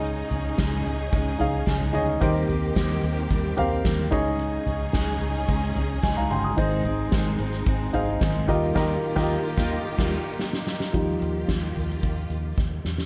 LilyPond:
<<
  \new Staff \with { instrumentName = "Upright piano" } { \time 4/4 \key ees \mixolydian \tempo 4 = 110 << { r1 | r1 | r2. <ees'' aes''>16 <f'' bes''>16 <g'' c'''>16 <bes'' ees'''>16~ | <bes'' ees'''>16 r2. r8. |
r1 | r1 | } \\ { <des ees' aes' des'' ees''>4 r4. <ees' aes' des'' f''>8. r16 <ees' aes' des'' ees''>16 r16 | <ees g' bes' c'' ees''>4. r4 <g' bes' c'' f''>8. r16 <des ees' aes' des'' ees''>8~ | <des ees' aes' des'' ees''>4 r2. | <aes, ees' aes' c'' ees''>4. r4 <ees' aes' c'' f''>8. r16 <ees f' g' bes' ees''>8 |
<ees f' g' bes' ees''>8 r16 <ees f' g' bes' ees''>8 r2 r8. | <f g ees'>4. r2 r8 | } >> }
  \new Staff \with { instrumentName = "Steel-string acoustic guitar" } { \time 4/4 \key ees \mixolydian <des aes des' ees' aes'>8 <des' ees' aes'>8 <des aes des' ees' aes'>8 <des' ees' aes'>8 <aes des' ees' aes'>8 <des' ees' aes'>8 <des aes des' ees' aes'>4 | <ees g bes c' g'>8 <bes c' g'>8 <ees g bes c' g'>8 <bes c' g'>8 <g bes c' g'>8 <bes c' g'>8 <ees g bes c' g'>8 <des aes des' ees' aes'>8~ | <des aes des' ees' aes'>8 <des' ees' aes'>8 <des aes des' ees' aes'>8 <des' ees' aes'>8 <aes des' ees' aes'>8 <des' ees' aes'>8 <des aes des' ees' aes'>4 | <aes, ees aes c' ees' aes'>8 <aes c' ees' aes'>8 <aes, ees aes c' ees' aes'>8 <aes c' ees' aes'>8 <aes c' ees' aes'>8 <aes c' ees' aes'>8 <aes, ees aes c' ees' aes'>8 <ees g bes ees' f'>8 |
<ees g bes ees' f'>8 r16 <bes ees' f'>8 r16 <bes ees' f'>8 r16 <g bes ees' f'>8 r4 r16 | r1 | }
  \new Staff \with { instrumentName = "String section" } { \time 4/4 \key ees \mixolydian <des des' ees' aes'>1 | <ees bes c' g'>2.~ <ees bes c' g'>8 <des des' ees' aes'>8~ | <des des' ees' aes'>1 | <aes c' ees'>2.~ <aes c' ees'>8 <ees bes f' g'>8~ |
<ees bes f' g'>1 | <ees bes f' g'>1 | }
  \new Staff \with { instrumentName = "Fingered electric bass" } { \clef bass \time 4/4 \key ees \mixolydian des,8 des,8 des,8 des,8 des,8 des,8 des,8 d,8 | ees,8 ees,8 ees,8 ees,8 ees,8 ees,8 ees,8 des,8~ | des,8 des,8 des,8 des,8 des,8 des,8 des,8 g,,8 | aes,,8 aes,,8 aes,,8 aes,,8 aes,,8 aes,,8 aes,,8 ees,8 |
ees,8 r16 ees,8 r16 ees,8 r16 ees,8 r4 r16 | ees,8 ees,8 ees,8 ees,8 ees,8 ees,8 ees,8 fes,8 | }
  \new DrumStaff \with { instrumentName = "Drums" } \drummode { \time 4/4 hh16 hh16 <hh tomfh>8 <hh bd sn>8 hh8 <hh bd>8 <hh tomfh>8 <hh bd sn>16 tomfh16 hh8 | <hh bd>16 hh16 <hh tomfh>8 <hh bd sn>8 hh16 hh16 <hh bd>8 <hh tomfh>8 <hh bd sn>8 <hh bd>8 | hh8 <hh tomfh>8 <hh bd sn>8 hh16 hh16 <hh bd>8 <hh tomfh>8 <hh bd sn>16 tomfh16 hh8 | <hh bd>16 hh16 <hh tomfh>8 <hh bd sn>8 hh16 <hh sn>16 <hh bd>8 <hh tomfh>8 <hh bd sn>16 tomfh16 <hh bd>8 |
<cymc bd sn>8. <bd sn>16 r8 <bd sn>8 r16 <cymc bd sn>8. sn16 sn16 sn16 sn16 | <hh bd>8 hh8 <hh bd sn>8 <hh tomfh>16 sn16 <hh bd>8 hh8 <bd sn>8 sn16 sn16 | }
>>